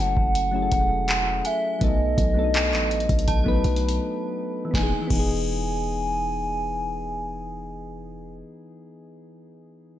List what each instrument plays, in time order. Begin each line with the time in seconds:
Already playing: synth keys F#3 A3 C#4 E4 A4
0.00 808-style bass F#1, soft synth lead F#5
0.17 808-style bass F#1, kick
0.35 closed hi-hat
0.51 synth keys F#3 A3 C#4 E4
0.56 synth keys G#4
0.62 synth keys A4
0.72 808-style bass E1, kick, closed hi-hat
1.08 clap, closed hi-hat
1.45 soft synth lead E5, synth bell G#5, closed hi-hat
1.79 808-style bass B1, synth keys F#3 A3 B3 D#4, soft synth lead D#5, kick, closed hi-hat
1.84 synth keys A4
2.18 808-style bass B1, kick, closed hi-hat
2.34 synth keys F#3 A3 B3 D4
2.39 synth keys A4
2.44 synth keys D#4
2.54 clap, closed hi-hat
2.73 808-style bass A1, clap
2.91 closed hi-hat
3.00 closed hi-hat
3.09 808-style bass B1, kick, closed hi-hat
3.19 closed hi-hat
3.28 synth bell A5, kick, closed hi-hat
3.44 synth keys F#3 A3 B3 D#4, kick
3.48 synth keys B4
3.64 808-style bass B1, closed hi-hat
3.76 closed hi-hat
3.89 closed hi-hat
4.65 synth keys E3
4.71 808-style bass E1, synth keys B3, kick, snare
4.75 synth keys D#4, synth bell G#5, soft synth lead G#5
4.83 synth keys G#4
5.02 synth keys E3
5.07 808-style bass E1, synth keys B3, kick, crash
5.13 synth keys D#4, soft synth lead G#5
5.19 synth keys G#4